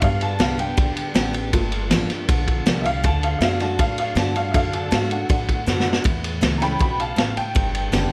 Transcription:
0.02 steel-string acoustic guitar G2, upright bass G2, honky-tonk piano G3 B3 D4 F5, kick, ride
0.21 honky-tonk piano A5, ride
0.39 upright bass C2, steel-string acoustic guitar D3 G3 B3 G4, honky-tonk piano F5, snare, ride
0.58 steel-string acoustic guitar B3 G4, honky-tonk piano G5, ride
0.77 upright bass B1, steel-string acoustic guitar D3, kick, ride
0.96 muted upright bass stroke, ride
1.14 upright bass A1, steel-string acoustic guitar D3 G3 B3 G4, snare, ride
1.33 steel-string acoustic guitar B3 G4, ride
1.53 upright bass G1, steel-string acoustic guitar G2, honky-tonk piano A3 A#3 F4, kick, ride
1.72 ride
1.90 upright bass A1, steel-string acoustic guitar F3 A#3 D4 G4, snare, ride
2.09 steel-string acoustic guitar D4 G4, snare, ride
2.29 upright bass A#1, steel-string acoustic guitar D3, kick, ride
2.48 kick, ride
2.66 upright bass C2, steel-string acoustic guitar F3 A#3 D4 G4, snare, ride
2.82 steel-string acoustic guitar G4, honky-tonk piano E5, ride
2.86 steel-string acoustic guitar D4, honky-tonk piano F5
3.04 upright bass D2, steel-string acoustic guitar D3, honky-tonk piano A5, kick, ride
3.23 honky-tonk piano F5, ride
3.39 upright bass F#2, steel-string acoustic guitar D3 A3 D4 F#4, honky-tonk piano E5, snare, ride
3.43 honky-tonk piano F5
3.60 honky-tonk piano F#3 A3 D4 A5, steel-string acoustic guitar D4 F#4, snare, ride
3.79 steel-string acoustic guitar A2, upright bass A2, honky-tonk piano F5, kick, ride
3.98 honky-tonk piano F5, ride
4.15 upright bass G2, steel-string acoustic guitar D3 A3 D4 F#4, honky-tonk piano A5, snare, ride
4.35 steel-string acoustic guitar D4 F#4, honky-tonk piano F5, ride
4.52 upright bass F#2, steel-string acoustic guitar D3, honky-tonk piano F#3 D4 A4 E5, kick, ride
4.56 honky-tonk piano F5
4.73 honky-tonk piano A5, ride
4.91 upright bass G#2, steel-string acoustic guitar D3 A3 D4 F#4, honky-tonk piano F5, snare, ride
5.10 steel-string acoustic guitar D4 F#4, honky-tonk piano F#5, ride
5.29 steel-string acoustic guitar A2, upright bass A2, honky-tonk piano F#3 A3 D4, kick, ride
5.49 kick, ride
5.66 upright bass F#2, steel-string acoustic guitar D3 A3 D4 F#4, snare
5.80 snare
5.86 steel-string acoustic guitar D4 F#4
5.93 snare
6.04 upright bass E2, steel-string acoustic guitar A2, kick, ride
6.24 ride
6.41 upright bass C#2, steel-string acoustic guitar E3 A3 C#4 E4, snare, ride
6.58 honky-tonk piano E3 A3 C#4 G5 A#5, steel-string acoustic guitar C#4 E4, snare, ride
6.63 honky-tonk piano B5
6.79 upright bass B1, steel-string acoustic guitar B2, honky-tonk piano G5 B5, kick, ride
7.00 honky-tonk piano F5 A5, ride
7.16 upright bass A1, steel-string acoustic guitar A2, honky-tonk piano F5 A5, snare, ride
7.37 honky-tonk piano G5, muted upright bass stroke, ride
7.55 upright bass G1, steel-string acoustic guitar G2, kick, ride
7.75 ride
7.92 upright bass F#1, steel-string acoustic guitar D3 G3 B3 G4, snare, ride

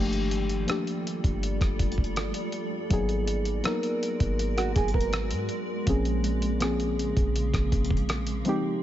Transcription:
Already playing: 808-style bass G1, synth keys F3 A3 A#3 D4 G4, ambient pad G3 F4 A4 D5
0.13 closed hi-hat
0.31 closed hi-hat
0.49 closed hi-hat
0.67 synth keys F3 A3 A#3 D4 G4, cross-stick, closed hi-hat
0.87 closed hi-hat
1.07 closed hi-hat
1.24 808-style bass G1, kick, closed hi-hat
1.43 closed hi-hat
1.61 808-style bass G1, kick, cross-stick, closed hi-hat
1.79 kick, closed hi-hat
1.92 closed hi-hat
1.98 kick
2.04 closed hi-hat
2.16 cross-stick, closed hi-hat
2.34 closed hi-hat
2.52 closed hi-hat
2.90 808-style bass G#1, synth keys F#3 A#3 B3 D#4 G#4, ambient pad G#3 F#4 A#4, kick, closed hi-hat
3.09 closed hi-hat
3.27 closed hi-hat
3.45 closed hi-hat
3.63 synth keys F#3 A#3 B3 D#4 A#4, cross-stick, closed hi-hat
3.83 closed hi-hat
4.03 closed hi-hat
4.20 808-style bass G#1, kick, closed hi-hat
4.39 closed hi-hat
4.57 nylon-string guitar F#4, cross-stick, closed hi-hat
4.76 808-style bass G#1, nylon-string guitar G#4, kick, closed hi-hat
4.88 closed hi-hat
4.94 nylon-string guitar A#4, kick
5.01 closed hi-hat
5.13 cross-stick, closed hi-hat
5.31 808-style bass G#2, closed hi-hat
5.49 closed hi-hat
5.86 808-style bass A#1, ambient pad C#3 A#3, synth keys F3 A#3 C4 C#4 G#4, kick, closed hi-hat
6.05 closed hi-hat
6.24 closed hi-hat
6.42 closed hi-hat
6.60 synth keys F3 A#3 C4 C#4 G#4, cross-stick, closed hi-hat
6.80 closed hi-hat
6.99 closed hi-hat
7.17 808-style bass A#1, kick, closed hi-hat
7.36 closed hi-hat
7.54 808-style bass A#1, kick, cross-stick, closed hi-hat
7.72 kick, closed hi-hat
7.85 closed hi-hat
7.91 kick
7.97 closed hi-hat
8.09 cross-stick, closed hi-hat
8.27 closed hi-hat
8.45 synth keys F3 G#3 C4 D#4 G4, closed hi-hat

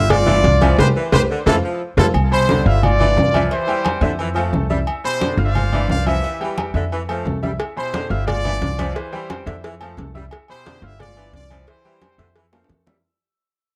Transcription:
Already playing: upright bass G1, grand piano F4 F5 F6, trumpet section E5
0.10 trumpet section F4 D5, cowbell, high conga, low conga, low agogo
0.26 saxophone section E3, grand piano D4 D5 D6, high conga, low conga, low agogo
0.44 upright bass C2, cowbell, high conga
0.60 grand piano E3 E4 E5, saxophone section F3, cowbell, high conga, low agogo
0.78 upright bass C2, trumpet section G4 B4 C5, grand piano G4 B4 C5, cowbell, low conga, high timbale
0.96 saxophone section E3
1.12 upright bass C2, trumpet section G4 B4 C5, grand piano G4 B4 C5, cowbell, low conga, high timbale
1.30 saxophone section D3
1.46 upright bass F2, saxophone section E3, trumpet section E4 F4 A4, grand piano F4 A4 C5, cowbell, low conga, high timbale
1.64 saxophone section F3
1.97 upright bass F2, saxophone section G3, trumpet section E4 F4 A4, grand piano F4 A4 C5, cowbell, low conga, high timbale
2.14 upright bass C2, high conga, low agogo
2.31 grand piano B2 C5 B5, trumpet section E4 G4 C5, high conga, low agogo
2.48 saxophone section D3, high conga
2.66 upright bass G1, grand piano F4 F5 F6, trumpet section E5, high conga
2.83 trumpet section F4 D5, high conga, low conga, low agogo
3.00 saxophone section E3, grand piano D4 D5 D6, high conga, low conga, low agogo
3.16 upright bass C2, high conga, low timbale
3.34 grand piano E3 E4 E5, saxophone section F3, high conga, low agogo
3.51 grand piano E3 E4 E5, trumpet section E4 G4 C5, high conga, low agogo
3.67 saxophone section E3, grand piano G3 G4 G5, high conga, low agogo
3.85 high conga, low agogo
4.01 upright bass F2, saxophone section D3, grand piano E4 E5 E6, high conga
4.19 saxophone section E3, high conga, low agogo
4.35 saxophone section F3, grand piano A3 A4 A5, high conga, low agogo
4.53 upright bass C2, high conga, low timbale
4.70 saxophone section G3, grand piano E4 E5 E6, high conga
4.87 high conga, low agogo
5.04 grand piano B2 C5 B5, trumpet section E4 G4 C5, high conga, low agogo
5.21 saxophone section D3, high conga
5.37 upright bass G1, grand piano F4 F5 F6, high conga
5.45 trumpet section C5 D5 F5
5.55 high conga, low conga, low agogo
5.73 saxophone section E3, grand piano D4 D5 D6, high conga, low conga, low agogo
5.88 upright bass C2, trumpet section F5, high conga, low timbale
6.07 grand piano E3 E4 E5, saxophone section F3, trumpet section G4 B4 E5, high conga, low agogo
6.24 grand piano E3 E4 E5, high conga, low agogo
6.40 saxophone section E3, grand piano G3 G4 G5, high conga, low agogo
6.58 high conga, low agogo
6.74 upright bass F2, saxophone section D3, grand piano E4 E5 E6, high conga
6.92 saxophone section E3, high conga, low agogo
7.09 saxophone section F3, grand piano A3 A4 A5, high conga, low agogo
7.25 upright bass C2, high conga, low timbale
7.43 saxophone section G3, grand piano E4 E5 E6, high conga
7.59 cowbell, high conga, low agogo
7.76 grand piano B2 C5 B5, trumpet section E4 G4 C5, high conga, low agogo
7.94 saxophone section D3, cowbell, high conga
8.10 upright bass G1, grand piano F4 F5 F6, trumpet section E5, high conga
8.27 trumpet section F4 D5, cowbell, high conga, low conga, low agogo
8.44 saxophone section E3, grand piano D4 D5 D6, high conga, low conga, low agogo
8.61 upright bass C2, cowbell, high conga
8.78 grand piano E3 E4 E5, saxophone section F3, cowbell, high conga, low agogo
8.95 grand piano E3 E4 E5, trumpet section E4 G4 C5, cowbell, high conga, low agogo
9.12 saxophone section E3, grand piano G3 G4 G5, high conga, low agogo
9.30 cowbell, high conga, low agogo
9.46 upright bass F2, saxophone section D3, grand piano E4 E5 E6, cowbell, high conga
9.64 saxophone section E3, cowbell, high conga, low agogo
9.81 saxophone section F3, grand piano A3 A4 A5, high conga, low agogo
9.97 upright bass C2, cowbell, high conga, low timbale
10.14 saxophone section G3, grand piano E4 E5 E6, high conga
10.31 cowbell, high conga, low agogo
10.48 grand piano B2 C5 B5, trumpet section E4 G4 C5, high conga, low agogo
10.66 saxophone section D3, cowbell, high conga
10.82 upright bass G1, grand piano F4 F5 F6, trumpet section E5, high conga
10.99 trumpet section F4 D5, cowbell, high conga, low conga, low agogo
11.17 saxophone section E3, grand piano D4 D5 D6, high conga, low agogo
11.33 upright bass C2, trumpet section F4 D5, cowbell, high conga
11.50 grand piano E3 E4 E5, saxophone section F3, cowbell, high conga, low agogo
11.67 grand piano E3 E4 E5, trumpet section E4 G4 C5, cowbell, high conga, low agogo
11.85 saxophone section E3, grand piano G3 G4 G5, high conga, low agogo
12.02 cowbell, high conga, low agogo
12.18 upright bass F2, saxophone section D3, grand piano E4 E5 E6, cowbell, high conga
12.36 saxophone section E3, cowbell, high conga, low agogo
12.52 saxophone section F3, grand piano A3 A4 A5, high bongo, high conga, high timbale, low agogo
12.64 high timbale
12.69 upright bass F2, cowbell, low bongo, high conga
12.86 saxophone section G3, grand piano E4 E5 E6, low bongo, high conga, low timbale

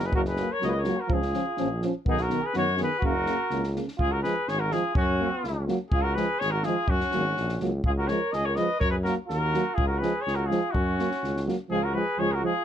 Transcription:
Already playing: tuba F#1
0.04 flugelhorn G#4, trumpet B4
0.13 tuba F#1, euphonium F#3 A#3, flugelhorn F#4, trumpet A#4, kick
0.25 flugelhorn G#4, trumpet B4, snare
0.36 euphonium F#3 A#3, snare
0.51 flugelhorn A#4, trumpet C#5
0.60 tuba C#2, euphonium F#3 A#3, flugelhorn A#4, trumpet D#5, snare
0.67 flugelhorn A#4 B4, trumpet C#5 D#5
0.74 flugelhorn A#4, trumpet C#5
0.84 euphonium F#3 A#3, snare
0.97 flugelhorn F#4, trumpet A#4
1.09 tuba C#2, euphonium F3 C#4, flugelhorn F4, kick
1.13 trumpet G#4
1.22 snare
1.33 euphonium F3 C#4, snare
1.57 tuba A#1, euphonium F3 C#4, snare
1.82 euphonium F3 C#4, snare
2.06 tuba B1, euphonium D#3 B3, flugelhorn D#4, trumpet G#4, kick
2.17 flugelhorn F#4, snare
2.22 trumpet A#4
2.29 euphonium D#3 B3, snare
2.42 flugelhorn G#4, trumpet B4
2.54 tuba F#2, euphonium D#3 B3, flugelhorn F#4, snare
2.58 trumpet C#5
2.77 euphonium D#3 B3, flugelhorn G#4, snare
2.83 trumpet B4
2.99 flugelhorn F#4, kick
3.03 tuba F#1, euphonium C#3 A#3, trumpet A#4
3.26 euphonium C#3 A#3, snare
3.50 tuba C#2, euphonium C#3 A#3, snare
3.64 snare
3.75 euphonium C#3 A#3, snare
3.88 snare
3.98 tuba C#2, flugelhorn F4, trumpet G#4, kick
4.11 flugelhorn F#4, trumpet A#4
4.22 euphonium F3 G#3, flugelhorn G#4, trumpet B4, snare
4.46 tuba G#1, flugelhorn G#4, trumpet C#5, snare
4.59 flugelhorn F#4, trumpet A#4
4.71 euphonium F3 G#3, flugelhorn F4, trumpet G#4, snare
4.95 tuba F#2, flugelhorn C#4, trumpet F#4, kick
5.19 euphonium F#3 A#3
5.44 tuba C#2, snare
5.67 euphonium F#3 A#3, snare
5.89 tuba C#2, flugelhorn F4, trumpet G#4, kick
6.02 flugelhorn F#4, trumpet A#4
6.14 euphonium F3 G#3, flugelhorn G#4, trumpet B4, snare
6.39 tuba G#1, flugelhorn G#4, trumpet C#5, snare
6.51 flugelhorn F#4, trumpet A#4
6.63 euphonium F3 G#3, flugelhorn F4, trumpet G#4, snare
6.88 tuba F#2, flugelhorn C#4, trumpet F#4, kick
7.01 snare
7.11 tuba G#1, euphonium F#3 A#3, snare
7.37 tuba A#1, snare
7.49 snare
7.60 tuba C#2, euphonium F#3 A#3, snare
7.84 tuba C#2, flugelhorn F4, trumpet G#4, kick
7.98 flugelhorn F#4, trumpet A#4
8.07 euphonium F3 G#3, flugelhorn A#4, trumpet C#5, snare
8.32 tuba C#2, flugelhorn G#4, trumpet D#5, snare
8.45 flugelhorn A#4, trumpet C#5
8.56 euphonium F3 G#3, flugelhorn B4, trumpet D#5, snare
8.79 tuba F#2, flugelhorn A#4, trumpet C#5, kick
8.90 flugelhorn G#4, trumpet B4
9.03 euphonium F#3 A#3, flugelhorn F#4, trumpet A#4, snare
9.27 tuba D#2, flugelhorn F#4, trumpet A#4, snare
9.54 euphonium F#3 A#3, snare
9.74 flugelhorn F4, trumpet G#4, kick
9.78 tuba C#2
9.87 flugelhorn F#4, trumpet A#4
9.98 euphonium F3 G#3, flugelhorn G#4, trumpet B4
10.03 snare
10.21 flugelhorn G#4, trumpet C#5
10.27 tuba C#2, snare
10.35 flugelhorn F#4, trumpet A#4
10.46 flugelhorn F4, trumpet G#4
10.50 euphonium F3 G#3, snare
10.71 tuba F#2, flugelhorn C#4, trumpet F#4, kick
10.98 euphonium F#3 A#3, snare
11.11 snare
11.23 tuba C#2, snare
11.37 snare
11.46 euphonium F#3 A#3, snare
11.70 tuba C#2, euphonium F3 G#3, flugelhorn F4, trumpet G#4
11.83 flugelhorn F#4, trumpet A#4
11.94 euphonium F3 G#3, trumpet B4
11.98 flugelhorn G#4
12.18 tuba C#2, euphonium F3 G#3, trumpet C#5
12.23 flugelhorn G#4
12.32 flugelhorn F#4, trumpet A#4
12.43 euphonium F3 G#3, flugelhorn F4, trumpet G#4

